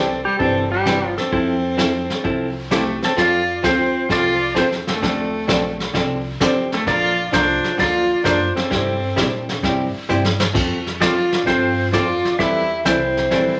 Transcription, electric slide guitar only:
0.00 0.25 A4 loud
0.25 0.39 G4 medium
0.39 0.71 A4 medium
0.72 1.15 G4 medium
1.18 2.52 A4 medium
2.72 3.01 C4 medium
2.72 3.04 G4 medium
3.04 3.17 C4 medium
3.04 3.19 A4 medium
3.19 3.61 F4 medium
3.19 3.65 D5 loud
3.64 4.07 F4 medium
3.64 4.12 C5 medium
4.11 4.53 F4 medium
4.11 4.58 D5 loud
4.57 4.65 F4 medium
4.57 4.66 C5 medium
4.89 5.76 C4 medium
4.89 5.77 A4 medium
6.42 6.71 C4 medium
6.42 6.70 G4 medium
6.74 6.87 C4 medium
6.74 6.87 A4 medium
6.87 7.30 F4 medium
6.87 7.33 D5 loud
7.34 7.76 F4 medium
7.34 7.79 C5 medium
7.80 8.22 F4 medium
7.80 8.27 D5 loud
8.25 8.55 F4 medium
8.25 8.56 C5 medium
8.56 9.45 C4 medium
8.56 9.45 A4 medium
11.02 11.45 F4 medium
11.02 11.47 D5 medium
11.47 11.91 F4 medium
11.47 11.93 C5 medium
11.94 12.37 F4 medium
11.94 12.38 D5 medium
12.39 12.83 G4 medium
12.39 12.87 E5 loud
12.86 13.60 E4 medium
12.86 13.60 C5 medium

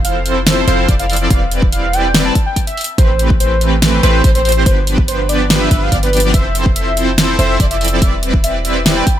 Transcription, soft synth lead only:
0.05 0.22 F5 medium
0.68 0.85 F5 loud
1.00 1.17 F5 loud
1.31 1.42 F5 medium
1.72 1.95 F5 medium
1.93 2.11 G5 loud
2.25 2.36 A5 medium
2.46 2.57 G5 medium
2.67 2.84 E5 loud
2.98 3.21 C5 loud
3.40 3.58 C5 medium
4.03 4.21 C5 loud
4.35 4.52 C5 loud
4.66 4.78 C5 medium
5.08 5.20 C5 medium
5.29 5.46 D5 loud
5.61 5.84 E5 medium
5.82 5.93 F5 medium
6.03 6.20 B4 loud
6.34 6.57 E5 loud
6.76 6.93 E5 medium
7.39 7.56 E5 loud
7.71 7.88 E5 loud
8.02 8.14 E5 medium
8.44 8.56 E5 medium
8.65 8.82 E5 loud
8.96 9.08 G5 medium

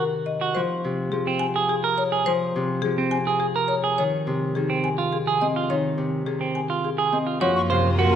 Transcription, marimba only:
0.00 0.17 A#4 medium
0.26 0.45 D#5 medium
0.55 0.74 C5 medium
1.12 1.31 G#4 medium
1.39 1.59 G#5 medium
1.69 1.88 G#4 medium
1.98 2.17 C#5 medium
2.26 2.45 C5 medium
2.82 3.02 G#4 medium
3.11 3.31 G#5 medium
3.40 3.60 G#4 medium
3.68 3.88 C#5 medium
3.98 4.17 C#5 medium
4.55 4.74 G#4 medium
4.84 5.03 G#5 medium
5.13 5.31 G#4 medium
5.41 5.60 D#5 medium
5.70 5.89 C#5 medium
6.26 6.46 G#4 medium
6.55 6.74 G#5 medium
6.84 7.03 G#4 medium
7.13 7.31 D#5 medium
7.41 7.60 C#5 medium
7.70 7.89 F5 medium
7.99 8.15 A#4 medium

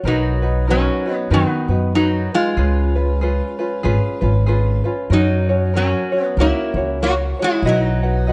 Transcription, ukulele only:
0.05 0.43 D#4 medium
0.05 0.42 F#4 medium
0.05 0.42 A#4 medium
0.05 0.41 B4 medium
0.42 0.67 D#4 soft
0.42 0.67 F#4 soft
0.42 0.67 B4 medium
0.67 1.06 D#4 medium
0.67 1.05 F#4 medium
0.67 1.05 A#4 medium
0.67 1.04 B4 medium
1.06 1.30 D#4 soft
1.06 1.30 F#4 soft
1.06 1.30 B4 medium
1.31 1.69 D#4 medium
1.31 1.69 F#4 medium
1.31 1.69 A#4 medium
1.31 1.68 B4 medium
1.70 1.94 D#4 soft
1.70 1.95 F#4 soft
1.70 1.94 B4 soft
1.95 2.33 D#4 medium
1.95 2.33 F#4 medium
1.95 2.32 A#4 medium
1.95 2.31 B4 medium
2.32 2.57 D#4 soft
2.32 2.57 B4 medium
2.57 2.95 C#4 medium
2.57 2.95 F4 medium
2.57 2.95 G#4 medium
2.57 2.94 B4 medium
2.95 3.21 C#4 soft
2.95 3.21 F4 soft
2.95 3.21 B4 medium
3.21 3.59 C#4 medium
3.21 3.58 F4 medium
3.21 3.59 G#4 medium
3.21 3.58 B4 medium
3.59 3.83 C#4 medium
3.59 3.84 F4 medium
3.59 3.84 B4 medium
3.83 4.21 C#4 medium
3.83 4.21 F4 medium
3.83 4.21 G#4 medium
3.83 4.20 B4 loud
4.21 4.46 C#4 medium
4.21 4.47 F4 medium
4.21 4.47 B4 medium
4.46 4.85 C#4 medium
4.46 4.84 F4 medium
4.46 4.85 G#4 medium
4.46 4.83 B4 medium
4.84 5.11 C#4 soft
4.84 5.11 F4 medium
4.84 5.10 B4 medium
5.11 5.49 C#4 medium
5.11 5.48 F#4 medium
5.11 5.48 A#4 medium
5.11 5.48 C#5 medium
5.49 5.74 C#4 soft
5.49 5.74 F#4 medium
5.49 5.74 C#5 medium
5.74 6.12 C#4 medium
5.74 6.12 F#4 medium
5.74 6.11 A#4 medium
5.74 6.11 C#5 medium
6.12 6.38 C#4 soft
6.12 6.38 F#4 soft
6.12 6.37 C#5 medium
6.38 6.76 C#4 medium
6.38 6.76 F#4 medium
6.38 6.76 A#4 medium
6.38 6.75 C#5 medium
6.76 7.02 C#4 soft
6.76 7.02 F#4 soft
6.76 7.01 C#5 medium
7.02 7.40 C#4 medium
7.02 7.39 F#4 medium
7.02 7.39 A#4 medium
7.02 7.38 C#5 medium
7.39 7.65 C#4 soft
7.39 7.64 F#4 medium
7.39 7.64 C#5 medium
7.65 8.02 F#4 medium
7.65 8.02 B4 medium
7.65 8.02 D#5 medium
7.65 8.02 F#5 medium
8.03 8.27 F#4 soft
8.03 8.28 B4 soft
8.03 8.28 F#5 medium
8.27 8.33 F#4 medium
8.27 8.33 B4 medium
8.27 8.33 D#5 medium
8.27 8.33 F#5 medium

